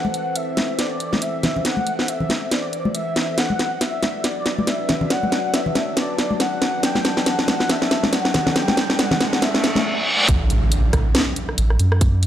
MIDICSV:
0, 0, Header, 1, 8, 480
1, 0, Start_track
1, 0, Tempo, 431655
1, 1837, Time_signature, 4, 2, 24, 8
1, 13642, End_track
2, 0, Start_track
2, 0, Title_t, "Soft synth lead"
2, 0, Program_c, 0, 80
2, 0, Note_on_c, 0, 78, 108
2, 400, Note_on_c, 0, 76, 96
2, 416, Note_off_c, 0, 78, 0
2, 880, Note_on_c, 0, 74, 98
2, 897, Note_off_c, 0, 76, 0
2, 1360, Note_on_c, 0, 76, 96
2, 1377, Note_off_c, 0, 74, 0
2, 1833, Note_off_c, 0, 76, 0
2, 1840, Note_on_c, 0, 78, 114
2, 2319, Note_on_c, 0, 76, 99
2, 2336, Note_off_c, 0, 78, 0
2, 2798, Note_on_c, 0, 74, 100
2, 2815, Note_off_c, 0, 76, 0
2, 3270, Note_off_c, 0, 74, 0
2, 3277, Note_on_c, 0, 76, 101
2, 3758, Note_on_c, 0, 78, 117
2, 3775, Note_off_c, 0, 76, 0
2, 4234, Note_off_c, 0, 78, 0
2, 4241, Note_on_c, 0, 76, 101
2, 4720, Note_on_c, 0, 74, 104
2, 4737, Note_off_c, 0, 76, 0
2, 5202, Note_on_c, 0, 76, 103
2, 5218, Note_off_c, 0, 74, 0
2, 5682, Note_on_c, 0, 78, 120
2, 5699, Note_off_c, 0, 76, 0
2, 6161, Note_on_c, 0, 76, 104
2, 6178, Note_off_c, 0, 78, 0
2, 6636, Note_off_c, 0, 76, 0
2, 6642, Note_on_c, 0, 74, 106
2, 7122, Note_on_c, 0, 78, 110
2, 7139, Note_off_c, 0, 74, 0
2, 7602, Note_on_c, 0, 79, 123
2, 7619, Note_off_c, 0, 78, 0
2, 8075, Note_off_c, 0, 79, 0
2, 8082, Note_on_c, 0, 78, 109
2, 8564, Note_on_c, 0, 76, 112
2, 8581, Note_off_c, 0, 78, 0
2, 9034, Note_off_c, 0, 76, 0
2, 9040, Note_on_c, 0, 78, 109
2, 9519, Note_on_c, 0, 79, 125
2, 9536, Note_off_c, 0, 78, 0
2, 9997, Note_on_c, 0, 78, 108
2, 10014, Note_off_c, 0, 79, 0
2, 10478, Note_on_c, 0, 76, 115
2, 10495, Note_off_c, 0, 78, 0
2, 11193, Note_off_c, 0, 76, 0
2, 11199, Note_on_c, 0, 74, 83
2, 11421, Note_off_c, 0, 74, 0
2, 13642, End_track
3, 0, Start_track
3, 0, Title_t, "Synth drone"
3, 0, Program_c, 1, 95
3, 0, Note_on_c, 1, 52, 79
3, 0, Note_on_c, 1, 60, 75
3, 0, Note_on_c, 1, 69, 88
3, 3713, Note_off_c, 1, 52, 0
3, 3713, Note_off_c, 1, 60, 0
3, 3713, Note_off_c, 1, 69, 0
3, 3756, Note_on_c, 1, 54, 79
3, 3756, Note_on_c, 1, 62, 75
3, 3756, Note_on_c, 1, 71, 89
3, 7558, Note_off_c, 1, 71, 0
3, 7598, Note_on_c, 1, 69, 92
3, 10912, Note_off_c, 1, 54, 0
3, 10912, Note_off_c, 1, 62, 0
3, 10924, Note_off_c, 1, 69, 0
3, 13642, End_track
4, 0, Start_track
4, 0, Title_t, "Sub bass"
4, 0, Program_c, 2, 38
4, 11437, Note_on_c, 2, 33, 105
4, 12144, Note_off_c, 2, 33, 0
4, 12157, Note_on_c, 2, 33, 90
4, 12381, Note_off_c, 2, 33, 0
4, 12877, Note_on_c, 2, 33, 96
4, 13100, Note_off_c, 2, 33, 0
4, 13115, Note_on_c, 2, 42, 83
4, 13642, Note_off_c, 2, 42, 0
4, 13642, End_track
5, 0, Start_track
5, 0, Title_t, "Impact"
5, 0, Program_c, 3, 103
5, 11437, Note_on_c, 3, 60, 76
5, 13357, Note_off_c, 3, 60, 0
5, 13642, End_track
6, 0, Start_track
6, 0, Title_t, "Reverse cymbal"
6, 0, Program_c, 4, 119
6, 10476, Note_on_c, 4, 60, 81
6, 11436, Note_off_c, 4, 60, 0
6, 13642, End_track
7, 0, Start_track
7, 0, Title_t, "Riser"
7, 0, Program_c, 5, 103
7, 3755, Note_on_c, 5, 60, 79
7, 10956, Note_off_c, 5, 60, 0
7, 13642, End_track
8, 0, Start_track
8, 0, Title_t, "Drums"
8, 52, Note_on_c, 9, 63, 90
8, 156, Note_on_c, 9, 42, 54
8, 164, Note_off_c, 9, 63, 0
8, 267, Note_off_c, 9, 42, 0
8, 395, Note_on_c, 9, 42, 82
8, 506, Note_off_c, 9, 42, 0
8, 635, Note_on_c, 9, 38, 62
8, 635, Note_on_c, 9, 42, 54
8, 635, Note_on_c, 9, 63, 65
8, 746, Note_off_c, 9, 38, 0
8, 746, Note_off_c, 9, 42, 0
8, 746, Note_off_c, 9, 63, 0
8, 874, Note_on_c, 9, 38, 65
8, 874, Note_on_c, 9, 42, 80
8, 986, Note_off_c, 9, 38, 0
8, 986, Note_off_c, 9, 42, 0
8, 1114, Note_on_c, 9, 42, 51
8, 1225, Note_off_c, 9, 42, 0
8, 1253, Note_on_c, 9, 38, 54
8, 1256, Note_on_c, 9, 63, 84
8, 1355, Note_on_c, 9, 42, 78
8, 1364, Note_off_c, 9, 38, 0
8, 1367, Note_off_c, 9, 63, 0
8, 1466, Note_off_c, 9, 42, 0
8, 1594, Note_on_c, 9, 38, 66
8, 1594, Note_on_c, 9, 42, 55
8, 1596, Note_on_c, 9, 64, 85
8, 1705, Note_off_c, 9, 38, 0
8, 1705, Note_off_c, 9, 42, 0
8, 1708, Note_off_c, 9, 64, 0
8, 1739, Note_on_c, 9, 64, 83
8, 1834, Note_on_c, 9, 38, 66
8, 1834, Note_on_c, 9, 42, 80
8, 1850, Note_off_c, 9, 64, 0
8, 1945, Note_off_c, 9, 38, 0
8, 1945, Note_off_c, 9, 42, 0
8, 1968, Note_on_c, 9, 63, 89
8, 2075, Note_on_c, 9, 42, 52
8, 2079, Note_off_c, 9, 63, 0
8, 2186, Note_off_c, 9, 42, 0
8, 2213, Note_on_c, 9, 38, 60
8, 2316, Note_on_c, 9, 42, 80
8, 2324, Note_off_c, 9, 38, 0
8, 2427, Note_off_c, 9, 42, 0
8, 2451, Note_on_c, 9, 64, 74
8, 2548, Note_on_c, 9, 63, 64
8, 2556, Note_on_c, 9, 38, 68
8, 2556, Note_on_c, 9, 42, 52
8, 2562, Note_off_c, 9, 64, 0
8, 2659, Note_off_c, 9, 63, 0
8, 2668, Note_off_c, 9, 38, 0
8, 2668, Note_off_c, 9, 42, 0
8, 2797, Note_on_c, 9, 38, 70
8, 2797, Note_on_c, 9, 42, 77
8, 2908, Note_off_c, 9, 38, 0
8, 2908, Note_off_c, 9, 42, 0
8, 3036, Note_on_c, 9, 42, 51
8, 3147, Note_off_c, 9, 42, 0
8, 3172, Note_on_c, 9, 63, 88
8, 3276, Note_on_c, 9, 42, 77
8, 3284, Note_off_c, 9, 63, 0
8, 3387, Note_off_c, 9, 42, 0
8, 3515, Note_on_c, 9, 38, 74
8, 3515, Note_on_c, 9, 42, 53
8, 3626, Note_off_c, 9, 38, 0
8, 3626, Note_off_c, 9, 42, 0
8, 3755, Note_on_c, 9, 38, 77
8, 3755, Note_on_c, 9, 42, 77
8, 3866, Note_off_c, 9, 38, 0
8, 3866, Note_off_c, 9, 42, 0
8, 3893, Note_on_c, 9, 63, 85
8, 3996, Note_on_c, 9, 38, 79
8, 3996, Note_on_c, 9, 42, 52
8, 4004, Note_off_c, 9, 63, 0
8, 4108, Note_off_c, 9, 38, 0
8, 4108, Note_off_c, 9, 42, 0
8, 4237, Note_on_c, 9, 38, 78
8, 4237, Note_on_c, 9, 42, 75
8, 4348, Note_off_c, 9, 38, 0
8, 4348, Note_off_c, 9, 42, 0
8, 4477, Note_on_c, 9, 38, 77
8, 4477, Note_on_c, 9, 42, 51
8, 4478, Note_on_c, 9, 63, 61
8, 4588, Note_off_c, 9, 38, 0
8, 4588, Note_off_c, 9, 42, 0
8, 4590, Note_off_c, 9, 63, 0
8, 4716, Note_on_c, 9, 38, 76
8, 4716, Note_on_c, 9, 42, 78
8, 4827, Note_off_c, 9, 38, 0
8, 4827, Note_off_c, 9, 42, 0
8, 4956, Note_on_c, 9, 38, 78
8, 4956, Note_on_c, 9, 42, 51
8, 5067, Note_off_c, 9, 38, 0
8, 5067, Note_off_c, 9, 42, 0
8, 5099, Note_on_c, 9, 63, 91
8, 5196, Note_on_c, 9, 38, 78
8, 5196, Note_on_c, 9, 42, 74
8, 5210, Note_off_c, 9, 63, 0
8, 5307, Note_off_c, 9, 38, 0
8, 5307, Note_off_c, 9, 42, 0
8, 5436, Note_on_c, 9, 38, 86
8, 5436, Note_on_c, 9, 42, 53
8, 5445, Note_on_c, 9, 64, 72
8, 5547, Note_off_c, 9, 38, 0
8, 5547, Note_off_c, 9, 42, 0
8, 5556, Note_off_c, 9, 64, 0
8, 5572, Note_on_c, 9, 64, 93
8, 5675, Note_on_c, 9, 38, 86
8, 5675, Note_on_c, 9, 42, 81
8, 5683, Note_off_c, 9, 64, 0
8, 5787, Note_off_c, 9, 38, 0
8, 5787, Note_off_c, 9, 42, 0
8, 5819, Note_on_c, 9, 63, 85
8, 5917, Note_on_c, 9, 38, 87
8, 5917, Note_on_c, 9, 42, 49
8, 5930, Note_off_c, 9, 63, 0
8, 6028, Note_off_c, 9, 38, 0
8, 6028, Note_off_c, 9, 42, 0
8, 6157, Note_on_c, 9, 38, 87
8, 6157, Note_on_c, 9, 42, 81
8, 6268, Note_off_c, 9, 38, 0
8, 6268, Note_off_c, 9, 42, 0
8, 6296, Note_on_c, 9, 64, 77
8, 6398, Note_on_c, 9, 38, 85
8, 6398, Note_on_c, 9, 42, 52
8, 6401, Note_on_c, 9, 63, 57
8, 6407, Note_off_c, 9, 64, 0
8, 6509, Note_off_c, 9, 38, 0
8, 6509, Note_off_c, 9, 42, 0
8, 6512, Note_off_c, 9, 63, 0
8, 6637, Note_on_c, 9, 38, 87
8, 6637, Note_on_c, 9, 42, 80
8, 6748, Note_off_c, 9, 38, 0
8, 6748, Note_off_c, 9, 42, 0
8, 6878, Note_on_c, 9, 38, 83
8, 6878, Note_on_c, 9, 42, 48
8, 6989, Note_off_c, 9, 38, 0
8, 6989, Note_off_c, 9, 42, 0
8, 7012, Note_on_c, 9, 63, 83
8, 7117, Note_on_c, 9, 38, 88
8, 7117, Note_on_c, 9, 42, 73
8, 7123, Note_off_c, 9, 63, 0
8, 7228, Note_off_c, 9, 38, 0
8, 7228, Note_off_c, 9, 42, 0
8, 7358, Note_on_c, 9, 38, 92
8, 7358, Note_on_c, 9, 42, 54
8, 7469, Note_off_c, 9, 38, 0
8, 7469, Note_off_c, 9, 42, 0
8, 7597, Note_on_c, 9, 38, 96
8, 7597, Note_on_c, 9, 42, 83
8, 7708, Note_off_c, 9, 38, 0
8, 7708, Note_off_c, 9, 42, 0
8, 7730, Note_on_c, 9, 63, 85
8, 7734, Note_on_c, 9, 38, 79
8, 7837, Note_off_c, 9, 38, 0
8, 7837, Note_on_c, 9, 38, 96
8, 7837, Note_on_c, 9, 42, 53
8, 7841, Note_off_c, 9, 63, 0
8, 7948, Note_off_c, 9, 38, 0
8, 7948, Note_off_c, 9, 42, 0
8, 7974, Note_on_c, 9, 38, 84
8, 8077, Note_off_c, 9, 38, 0
8, 8077, Note_on_c, 9, 38, 98
8, 8077, Note_on_c, 9, 42, 80
8, 8188, Note_off_c, 9, 38, 0
8, 8188, Note_off_c, 9, 42, 0
8, 8215, Note_on_c, 9, 38, 85
8, 8317, Note_on_c, 9, 63, 60
8, 8318, Note_off_c, 9, 38, 0
8, 8318, Note_on_c, 9, 38, 96
8, 8318, Note_on_c, 9, 42, 53
8, 8428, Note_off_c, 9, 63, 0
8, 8429, Note_off_c, 9, 38, 0
8, 8429, Note_off_c, 9, 42, 0
8, 8455, Note_on_c, 9, 38, 82
8, 8557, Note_off_c, 9, 38, 0
8, 8557, Note_on_c, 9, 38, 101
8, 8557, Note_on_c, 9, 42, 81
8, 8668, Note_off_c, 9, 38, 0
8, 8668, Note_off_c, 9, 42, 0
8, 8694, Note_on_c, 9, 38, 88
8, 8797, Note_off_c, 9, 38, 0
8, 8797, Note_on_c, 9, 38, 101
8, 8797, Note_on_c, 9, 42, 52
8, 8909, Note_off_c, 9, 38, 0
8, 8909, Note_off_c, 9, 42, 0
8, 8934, Note_on_c, 9, 38, 87
8, 8935, Note_on_c, 9, 63, 86
8, 9037, Note_off_c, 9, 38, 0
8, 9037, Note_on_c, 9, 38, 96
8, 9037, Note_on_c, 9, 42, 76
8, 9046, Note_off_c, 9, 63, 0
8, 9148, Note_off_c, 9, 38, 0
8, 9148, Note_off_c, 9, 42, 0
8, 9174, Note_on_c, 9, 38, 86
8, 9277, Note_off_c, 9, 38, 0
8, 9277, Note_on_c, 9, 38, 103
8, 9277, Note_on_c, 9, 42, 54
8, 9284, Note_on_c, 9, 64, 83
8, 9388, Note_off_c, 9, 38, 0
8, 9388, Note_off_c, 9, 42, 0
8, 9396, Note_off_c, 9, 64, 0
8, 9414, Note_on_c, 9, 38, 90
8, 9415, Note_on_c, 9, 64, 88
8, 9516, Note_off_c, 9, 38, 0
8, 9516, Note_on_c, 9, 38, 106
8, 9516, Note_on_c, 9, 42, 85
8, 9526, Note_off_c, 9, 64, 0
8, 9627, Note_off_c, 9, 38, 0
8, 9627, Note_off_c, 9, 42, 0
8, 9653, Note_on_c, 9, 38, 89
8, 9659, Note_on_c, 9, 63, 85
8, 9755, Note_off_c, 9, 38, 0
8, 9755, Note_on_c, 9, 38, 111
8, 9755, Note_on_c, 9, 42, 55
8, 9770, Note_off_c, 9, 63, 0
8, 9867, Note_off_c, 9, 38, 0
8, 9867, Note_off_c, 9, 42, 0
8, 9893, Note_on_c, 9, 38, 92
8, 9996, Note_off_c, 9, 38, 0
8, 9996, Note_on_c, 9, 38, 107
8, 9996, Note_on_c, 9, 42, 85
8, 10107, Note_off_c, 9, 38, 0
8, 10107, Note_off_c, 9, 42, 0
8, 10132, Note_on_c, 9, 64, 91
8, 10134, Note_on_c, 9, 38, 97
8, 10236, Note_off_c, 9, 38, 0
8, 10236, Note_on_c, 9, 38, 110
8, 10236, Note_on_c, 9, 42, 55
8, 10240, Note_on_c, 9, 63, 59
8, 10243, Note_off_c, 9, 64, 0
8, 10347, Note_off_c, 9, 38, 0
8, 10347, Note_off_c, 9, 42, 0
8, 10351, Note_off_c, 9, 63, 0
8, 10374, Note_on_c, 9, 38, 94
8, 10477, Note_off_c, 9, 38, 0
8, 10477, Note_on_c, 9, 38, 106
8, 10477, Note_on_c, 9, 42, 85
8, 10588, Note_off_c, 9, 38, 0
8, 10588, Note_off_c, 9, 42, 0
8, 10614, Note_on_c, 9, 38, 96
8, 10716, Note_off_c, 9, 38, 0
8, 10716, Note_on_c, 9, 38, 108
8, 10716, Note_on_c, 9, 42, 55
8, 10828, Note_off_c, 9, 38, 0
8, 10828, Note_off_c, 9, 42, 0
8, 10847, Note_on_c, 9, 63, 88
8, 10854, Note_on_c, 9, 38, 94
8, 10958, Note_off_c, 9, 63, 0
8, 10965, Note_off_c, 9, 38, 0
8, 11436, Note_on_c, 9, 42, 89
8, 11437, Note_on_c, 9, 36, 127
8, 11548, Note_off_c, 9, 36, 0
8, 11548, Note_off_c, 9, 42, 0
8, 11677, Note_on_c, 9, 42, 59
8, 11788, Note_off_c, 9, 42, 0
8, 11917, Note_on_c, 9, 42, 87
8, 12028, Note_off_c, 9, 42, 0
8, 12155, Note_on_c, 9, 37, 78
8, 12155, Note_on_c, 9, 42, 56
8, 12157, Note_on_c, 9, 36, 62
8, 12267, Note_off_c, 9, 37, 0
8, 12267, Note_off_c, 9, 42, 0
8, 12268, Note_off_c, 9, 36, 0
8, 12396, Note_on_c, 9, 38, 123
8, 12396, Note_on_c, 9, 42, 84
8, 12507, Note_off_c, 9, 38, 0
8, 12507, Note_off_c, 9, 42, 0
8, 12636, Note_on_c, 9, 42, 56
8, 12748, Note_off_c, 9, 42, 0
8, 12774, Note_on_c, 9, 37, 52
8, 12876, Note_on_c, 9, 42, 86
8, 12885, Note_off_c, 9, 37, 0
8, 12987, Note_off_c, 9, 42, 0
8, 13014, Note_on_c, 9, 37, 53
8, 13116, Note_on_c, 9, 42, 59
8, 13125, Note_off_c, 9, 37, 0
8, 13227, Note_off_c, 9, 42, 0
8, 13254, Note_on_c, 9, 37, 77
8, 13356, Note_on_c, 9, 42, 88
8, 13357, Note_on_c, 9, 36, 127
8, 13365, Note_off_c, 9, 37, 0
8, 13468, Note_off_c, 9, 36, 0
8, 13468, Note_off_c, 9, 42, 0
8, 13596, Note_on_c, 9, 42, 58
8, 13642, Note_off_c, 9, 42, 0
8, 13642, End_track
0, 0, End_of_file